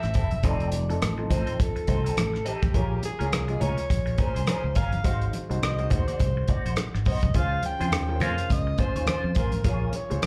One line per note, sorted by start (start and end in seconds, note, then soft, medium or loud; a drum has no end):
0.00 0.13 A1 medium
0.00 0.46 E3 medium
0.00 0.43 F3 medium
0.00 0.44 C4 medium
0.00 0.46 E4 medium
0.00 0.46 G4 medium
0.00 0.45 A4 medium
0.00 0.47 E5 medium
0.00 muted clean electric guitar stroke soft
0.00 cross-stick soft
0.00 closed hi-hat soft
0.14 0.44 E1 medium
0.14 0.30 C4 medium
0.14 0.30 E4 medium
0.14 0.30 A4 medium
0.14 kick medium
0.14 closed hi-hat medium
0.31 muted clean electric guitar stroke soft
0.31 closed hi-hat soft
0.31 high conga medium
0.43 0.91 F1 medium
0.43 0.76 F3 medium
0.43 0.71 C4 medium
0.43 0.77 C4 medium
0.43 0.71 D#4 medium
0.43 0.77 D#4 medium
0.43 0.71 A4 medium
0.43 0.77 A4 medium
0.43 1.03 D5 medium
0.43 kick medium
0.43 closed hi-hat medium
0.43 muted conga soft
0.60 closed hi-hat soft
0.72 closed hi-hat medium
0.72 muted conga soft
0.89 1.09 F3 medium
0.89 1.10 C4 medium
0.89 1.10 D#4 medium
0.89 1.10 A4 medium
0.89 muted clean electric guitar stroke soft
0.89 closed hi-hat soft
1.02 1.25 A1 medium
1.02 muted clean electric guitar stroke soft
1.02 cross-stick loud
1.02 closed hi-hat medium
1.02 high conga medium
1.18 2.03 F3 medium
1.18 2.03 C4 medium
1.18 2.04 D#4 medium
1.18 2.04 A4 medium
1.18 muted clean electric guitar stroke soft
1.30 1.44 A1 medium
1.30 1.45 C4 soft
1.30 1.45 D#4 soft
1.30 1.45 A4 medium
1.30 1.63 C5 medium
1.30 kick medium
1.30 closed hi-hat medium
1.30 muted conga soft
1.30 low conga medium
1.46 1.57 C4 soft
1.46 1.58 D#4 soft
1.46 1.57 C5 soft
1.46 closed hi-hat soft
1.58 2.49 A4 medium
1.58 muted clean electric guitar stroke soft
1.58 kick medium
1.58 closed hi-hat medium
1.58 muted conga soft
1.76 muted clean electric guitar stroke soft
1.76 closed hi-hat soft
1.87 2.12 C2 medium
1.87 2.03 C4 soft
1.87 2.03 D#4 medium
1.87 2.03 C5 medium
1.87 kick medium
1.87 closed hi-hat medium
1.87 low conga medium
2.05 2.16 C4 soft
2.05 2.16 D#4 soft
2.05 2.15 A4 medium
2.05 closed hi-hat medium
2.17 2.41 A1 medium
2.17 cross-stick medium
2.17 closed hi-hat medium
2.17 high conga medium
2.33 muted clean electric guitar stroke soft
2.33 cross-stick soft
2.45 2.64 C4 medium
2.45 2.62 D#4 medium
2.45 3.04 G4 medium
2.45 2.61 A4 medium
2.45 closed hi-hat medium
2.62 2.73 A1 medium
2.62 muted clean electric guitar stroke soft
2.62 kick medium
2.62 closed hi-hat soft
2.62 high conga medium
2.74 2.98 A#1 medium
2.74 3.07 A#3 medium
2.74 2.93 C#4 medium
2.74 3.07 F4 medium
2.74 2.93 G#4 medium
2.74 3.07 G#4 medium
2.74 2.93 A#4 medium
2.74 3.08 C#5 medium
2.74 kick medium
2.74 closed hi-hat medium
2.74 muted conga soft
3.03 3.58 G#4 medium
3.03 muted clean electric guitar stroke soft
3.03 closed hi-hat medium
3.03 muted conga soft
3.19 3.33 C#2 medium
3.19 3.40 A#3 medium
3.19 3.31 C#4 soft
3.19 3.40 F4 medium
3.19 3.30 G#4 soft
3.19 3.40 G#4 medium
3.19 3.30 A#4 soft
3.19 3.41 C#5 medium
3.19 closed hi-hat soft
3.32 3.56 C2 medium
3.32 cross-stick loud
3.32 closed hi-hat medium
3.32 high conga medium
3.48 4.34 A#3 medium
3.48 4.34 F4 medium
3.48 4.34 G#4 medium
3.48 4.34 D#5 medium
3.48 muted clean electric guitar stroke soft
3.48 closed hi-hat soft
3.60 3.75 C#2 medium
3.60 3.79 C#4 medium
3.60 3.76 G#4 medium
3.60 3.76 A#4 medium
3.60 4.22 C#5 medium
3.60 closed hi-hat medium
3.60 muted conga soft
3.60 low conga medium
3.77 muted clean electric guitar stroke soft
3.77 closed hi-hat soft
3.89 4.13 A#1 medium
3.89 muted clean electric guitar stroke soft
3.89 kick medium
3.89 closed hi-hat medium
3.89 muted conga soft
4.06 muted clean electric guitar stroke soft
4.06 closed hi-hat soft
4.18 4.33 C#4 medium
4.18 4.33 G#4 medium
4.18 4.34 A#4 medium
4.18 4.78 C5 medium
4.18 kick medium
4.18 closed hi-hat medium
4.18 low conga medium
4.35 4.45 C2 medium
4.35 4.46 C#4 soft
4.35 4.46 G#4 soft
4.35 4.46 C5 soft
4.35 closed hi-hat medium
4.47 4.65 C#4 medium
4.47 4.63 G#4 medium
4.47 4.63 A#4 medium
4.47 cross-stick medium
4.47 closed hi-hat medium
4.47 high conga medium
4.64 4.74 C#2 medium
4.64 muted clean electric guitar stroke soft
4.75 5.00 G1 medium
4.75 4.91 C#4 medium
4.75 4.91 G#4 medium
4.75 4.91 A#4 medium
4.75 5.36 F5 medium
4.75 kick medium
4.75 closed hi-hat medium
4.92 muted clean electric guitar stroke soft
4.92 closed hi-hat soft
4.92 high conga medium
5.04 5.28 G#1 medium
5.04 5.37 G#3 medium
5.04 5.37 D#4 medium
5.04 5.31 D#4 medium
5.04 5.37 F#4 medium
5.04 5.32 F#4 medium
5.04 5.37 C5 medium
5.04 5.32 C5 medium
5.04 kick medium
5.04 closed hi-hat medium
5.04 muted conga soft
5.21 closed hi-hat soft
5.33 closed hi-hat medium
5.33 muted conga soft
5.49 5.60 C2 medium
5.49 5.70 G#3 medium
5.49 5.70 D#4 medium
5.49 5.70 F#4 medium
5.49 5.71 C5 medium
5.49 muted clean electric guitar stroke soft
5.49 closed hi-hat soft
5.62 5.86 C2 medium
5.62 5.93 D#5 loud
5.62 muted clean electric guitar stroke soft
5.62 cross-stick loud
5.62 closed hi-hat medium
5.62 high conga medium
5.78 6.64 G#3 medium
5.78 6.64 D#4 medium
5.78 6.64 F#4 medium
5.78 6.64 C5 medium
5.78 muted clean electric guitar stroke soft
5.78 closed hi-hat soft
5.90 6.05 D#2 medium
5.90 6.06 D#4 medium
5.90 6.06 F#4 soft
5.90 6.78 C5 medium
5.90 6.06 C5 medium
5.90 kick medium
5.90 closed hi-hat medium
5.90 muted conga soft
5.90 low conga medium
6.08 6.19 D#4 soft
6.08 6.19 F#4 soft
6.08 6.18 D5 medium
6.08 closed hi-hat soft
6.20 6.44 C2 medium
6.20 muted clean electric guitar stroke soft
6.20 kick medium
6.20 closed hi-hat medium
6.20 muted conga soft
6.37 muted clean electric guitar stroke soft
6.48 6.63 D#4 medium
6.48 6.64 F#4 medium
6.48 6.64 D5 medium
6.48 muted fingered electric bass stroke soft
6.48 kick medium
6.48 closed hi-hat medium
6.48 low conga medium
6.66 6.75 A#1 medium
6.66 6.77 D#4 soft
6.66 6.76 F#4 soft
6.66 6.76 C5 soft
6.66 closed hi-hat medium
6.76 cross-stick medium
6.76 closed hi-hat medium
6.76 high conga medium
6.94 7.04 G#1 medium
6.94 muted clean electric guitar stroke soft
6.94 cross-stick soft
7.05 7.20 B1 medium
7.05 7.24 D#4 medium
7.05 7.23 F#4 medium
7.05 7.22 C5 medium
7.05 7.38 D#5 medium
7.05 kick medium
7.05 open hi-hat medium
7.22 7.33 C2 medium
7.22 muted clean electric guitar stroke soft
7.22 kick medium
7.22 closed hi-hat soft
7.22 high conga medium
7.34 7.58 C#2 medium
7.34 7.67 C#3 medium
7.34 7.67 C#4 medium
7.34 7.67 F4 medium
7.34 7.53 F4 medium
7.34 7.53 G#4 medium
7.34 7.68 C5 medium
7.34 7.54 C5 medium
7.34 7.64 F5 loud
7.34 kick medium
7.34 closed hi-hat medium
7.63 8.24 G5 loud
7.63 muted clean electric guitar stroke soft
7.63 closed hi-hat medium
7.63 muted conga soft
7.79 7.93 F2 medium
7.79 8.00 C#3 medium
7.79 8.00 C#4 medium
7.79 8.00 F4 medium
7.79 7.92 F4 soft
7.79 7.91 G#4 medium
7.79 8.01 C5 medium
7.79 7.91 C5 medium
7.79 closed hi-hat soft
7.92 8.21 D#2 medium
7.92 cross-stick loud
7.92 closed hi-hat medium
7.92 high conga medium
8.07 8.93 C#3 medium
8.07 8.93 C#4 medium
8.07 8.94 F4 medium
8.07 8.14 A#4 medium
8.07 muted clean electric guitar stroke soft
8.16 8.97 C5 medium
8.20 8.35 F2 medium
8.20 8.39 F4 medium
8.20 8.37 G#4 medium
8.20 8.37 C5 medium
8.20 8.53 F5 medium
8.20 closed hi-hat medium
8.20 muted conga soft
8.20 low conga medium
8.38 muted clean electric guitar stroke soft
8.38 closed hi-hat soft
8.50 8.73 C#2 medium
8.50 8.82 D#5 medium
8.50 muted clean electric guitar stroke soft
8.50 kick medium
8.50 closed hi-hat medium
8.50 muted conga soft
8.67 muted clean electric guitar stroke soft
8.78 8.93 F4 medium
8.78 8.94 G#4 medium
8.78 8.94 C5 medium
8.78 9.37 C5 medium
8.78 kick medium
8.78 closed hi-hat medium
8.78 low conga medium
8.96 9.05 D#2 medium
8.96 9.06 F4 soft
8.96 9.06 G#4 soft
8.96 9.06 C#5 soft
8.96 closed hi-hat medium
9.06 9.25 F4 medium
9.06 9.24 G#4 medium
9.06 9.23 C5 medium
9.06 cross-stick medium
9.06 closed hi-hat medium
9.06 high conga medium
9.24 9.34 F2 medium
9.24 muted clean electric guitar stroke soft
9.35 9.60 A1 medium
9.35 9.51 F4 medium
9.35 9.51 G#4 medium
9.35 9.97 A#4 medium
9.35 9.51 C5 medium
9.35 kick medium
9.35 closed hi-hat medium
9.52 muted clean electric guitar stroke soft
9.52 closed hi-hat soft
9.52 high conga medium
9.63 9.88 A#1 medium
9.63 9.96 A#3 medium
9.63 9.97 F4 medium
9.63 9.92 F4 medium
9.63 9.97 G#4 medium
9.63 9.92 G#4 medium
9.63 9.97 C#5 medium
9.63 9.92 C#5 medium
9.63 kick medium
9.63 closed hi-hat medium
9.63 muted conga soft
9.93 10.26 C#5 medium
9.93 closed hi-hat medium
9.93 muted conga soft
10.10 10.21 C#2 medium
10.10 10.26 A#3 medium
10.10 10.26 F4 medium
10.10 10.26 G#4 medium
10.10 10.26 C5 medium
10.10 muted clean electric guitar stroke soft
10.10 closed hi-hat soft
10.22 10.26 C#2 medium
10.22 muted clean electric guitar stroke soft
10.22 cross-stick loud
10.22 closed hi-hat medium
10.22 high conga medium